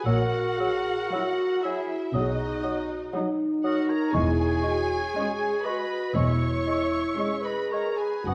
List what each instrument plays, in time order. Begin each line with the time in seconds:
0.05 double bass section A#1, cello section A#2, bassoon F#3, violin section F#4 F#5, clarinet F#4, french horn section A#4, oboe A#4, flute E6
0.58 bassoon F#3, french horn section G#4, flute E6
1.12 bassoon F#3, viola section F#3 E4, french horn section F#4, flute E6
1.63 bassoon F#3, clarinet E4, violin section E4 E5, oboe G#4, flute E6
2.14 double bass section B1, cello section B2, bassoon F#3, clarinet D#4, violin section D#4 D#5, oboe F#4, french horn section G#4, flute D#6
2.63 bassoon F#3, french horn section F#4, flute D#6
3.13 bassoon F#3, viola section F#3 D#4, french horn section D#4, flute D#6
3.64 bassoon F#3, clarinet F#4, violin section F#4 F#5, oboe A#4, flute D#6
3.89 clarinet A#4, violin section A#4 A#5, oboe C#5
4.12 cello section E2, bassoon G#3, french horn section E4, violin section G#4 G#5, clarinet G#4, flute C#6
4.16 double bass section E1, oboe C#5
4.62 bassoon G#3, french horn section F#4, flute C#6
5.14 viola section G#3 C#4, bassoon G#3, french horn section G#4, flute C#6
5.64 bassoon G#3, french horn section F#4, violin section B4 B5, clarinet B4, oboe D#5, flute C#6
6.14 double bass section E1, cello section E2, bassoon G#3, french horn section E4, clarinet C#5, violin section C#5 C#6, oboe E5, flute C#6
6.67 bassoon G#3, flute C#6
7.17 viola section G#3 C#4, bassoon G#3, french horn section G#4, flute C#6
7.44 clarinet B4, violin section B4 B5, oboe D#5
7.71 bassoon G#3, clarinet A#4, violin section A#4 A#5, oboe C#5, flute C#6
7.98 clarinet G#4, violin section G#4 G#5, oboe B4
8.26 double bass section F#1, cello section F#2, bassoon B3, violin section F#4 F#5, clarinet F#4, french horn section F#4, oboe B4, flute D#6